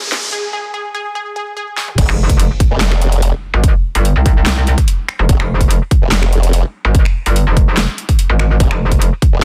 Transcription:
Already playing: supersaw synth F3 G#3 A#3, synth pluck G#4, riser
0.12 snare
0.33 synth pluck G#4
0.53 synth pluck G#4
0.74 synth pluck G#4
0.95 synth pluck G#4
1.15 synth pluck G#4
1.36 synth pluck G#4
1.57 synth pluck G#4
1.77 synth pluck G#4, snare
1.88 mid tom
1.98 wobble bass F1, kick, closed hi-hat, crash, impact
2.09 wobble bass F1, finger snap
2.29 kick, closed hi-hat
2.39 closed hi-hat
2.60 kick, closed hi-hat
2.71 wobble bass F1
2.81 snare, clap, closed hi-hat
2.92 finger snap
3.02 closed hi-hat
3.12 closed hi-hat
3.22 closed hi-hat
3.54 wobble bass G#1
3.64 kick, closed hi-hat
3.95 wobble bass G1, closed hi-hat
4.05 closed hi-hat
4.16 wobble bass C2
4.26 kick, closed hi-hat
4.46 snare, clap, closed hi-hat
4.67 closed hi-hat
4.78 kick, closed hi-hat
4.88 closed hi-hat
5.08 finger snap
5.19 wobble bass F1
5.29 wobble bass F1, kick, closed hi-hat
5.40 wobble bass F1, finger snap
5.61 kick, closed hi-hat
5.71 closed hi-hat
5.91 kick, closed hi-hat
6.02 wobble bass F1
6.12 snare, clap, closed hi-hat
6.23 finger snap
6.33 closed hi-hat
6.43 closed hi-hat
6.53 closed hi-hat
6.85 wobble bass G#1
6.95 kick, closed hi-hat
7.05 finger snap
7.26 wobble bass G1, closed hi-hat
7.36 closed hi-hat
7.47 wobble bass F1
7.57 kick, closed hi-hat
7.77 snare, clap, closed hi-hat
7.98 closed hi-hat
8.09 kick, closed hi-hat
8.19 closed hi-hat
8.30 wobble bass G#1
8.39 finger snap
8.60 wobble bass F1, kick, closed hi-hat
8.71 wobble bass F1, finger snap
8.92 kick, closed hi-hat
9.02 closed hi-hat
9.22 kick, closed hi-hat
9.33 wobble bass F1

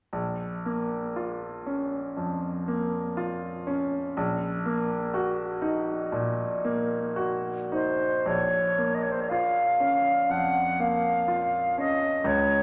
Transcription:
0.13 grand piano A#1
0.66 grand piano A#3
1.16 grand piano F4
1.67 grand piano C#4
2.17 grand piano F2
2.68 grand piano A#3
3.17 grand piano F4
3.67 grand piano C#4
4.17 grand piano A#1
4.66 grand piano A#3
5.14 grand piano F#4
5.62 grand piano D#4
6.12 grand piano A#2
6.64 grand piano A#3
7.16 grand piano F#4
7.72 grand piano D#4, flute C5
8.26 grand piano A#1, flute C#5
8.78 grand piano A#3
8.94 flute D#5
9.02 flute C#5
9.11 flute C5
9.21 flute C#5
9.29 grand piano F4, flute F5
9.80 grand piano C#4
10.29 grand piano F2, flute F#5
10.80 grand piano A#3, flute F5
11.28 grand piano F4
11.78 grand piano C#4, flute D#5
12.24 grand piano C#2, flute C#5

